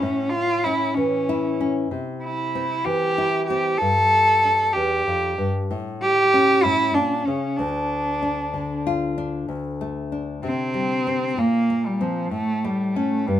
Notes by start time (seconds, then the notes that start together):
0.00 A2 C#4
0.30 F4
0.63 C#4 E4
0.94 E3 C#4
1.29 E4
1.61 C#4
1.91 C3
2.23 E4
2.55 C4
2.84 E3 G4
3.18 E4
3.46 C4 G4
3.77 G2 A4
4.45 D4
4.73 E2 G4
5.07 F2
5.38 G2
5.71 A2
6.02 G4
6.34 C#4
6.63 A2 E4
6.94 A#2 D4
7.25 C#3 C#4
7.56 D2 D4
8.22 D4
8.54 D3
8.87 F4
9.18 D4
9.48 D2
9.81 A3
10.12 D4
10.43 C3 C4
10.74 G3
11.07 C4
11.37 A#2 A#3
11.70 A#3
11.86 G3
12.01 F3 C4
12.31 A2 A3
12.64 G3 A3
12.95 A3 C#4
13.26 G2 G3